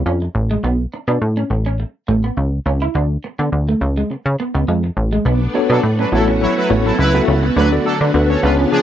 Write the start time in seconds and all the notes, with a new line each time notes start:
0.06 F2 C#4
0.22 muted clean electric guitar stroke
0.35 A1
0.51 G#3
0.64 B1 B3
0.94 muted clean electric guitar stroke
1.08 B2 D4
1.22 A2
1.37 C#4
1.50 A1, muted clean electric guitar stroke
1.66 C#4
1.80 muted clean electric guitar stroke
2.08 A1 A3
2.24 B3
2.37 C#2, muted clean electric guitar stroke
2.66 C#2 C#4
2.82 E4
2.95 D2 D4
3.24 muted clean electric guitar stroke
3.39 D3 B3
3.52 D2
3.69 A3
3.81 C#2, muted clean electric guitar stroke
3.97 G#3
4.10 C#3, muted clean electric guitar stroke
4.26 C#3
4.40 B3
4.54 C#2 B3
4.68 F2 G#3
4.84 muted clean electric guitar stroke
4.97 A1
5.13 G#3
5.25 B1 A3 B3 D4
5.54 B3 D4 F#4 A4 C#5, muted clean electric guitar stroke
5.70 B2 F#3 D4 A4
5.83 A2
5.99 F#3 C#4 D4 B4
6.12 A1 F#3 B3 C#4 E4 F#4 A4 C#5, muted clean electric guitar stroke
6.28 C#4
6.41 F#3 E4 C#5, muted clean electric guitar stroke
6.57 F#3 E4 B4
6.70 A1 A3 B3 E4 F#4 A4 C#5
6.85 F#3 B3 E4 A4
6.99 C#2 F#3 E4 B4, muted clean electric guitar stroke
7.14 B3 E4 F#4 A4 E5
7.28 C#2 C#4
7.43 B3
7.56 D2 D3 F#3 A3 B3 D4 B4
7.72 B3 D4 F#4 A4 D5
7.85 F#3 D4 A4, muted clean electric guitar stroke
8.01 D3 D4
8.14 D2 B3 D4 F#4 A4 B4
8.29 C#4 A4 C#5
8.42 C#2 C#3 G#3 B3 D4 F4 G#4 B4 C#5, muted clean electric guitar stroke
8.59 C#4
8.71 C#3 F3 D4 G#4, muted clean electric guitar stroke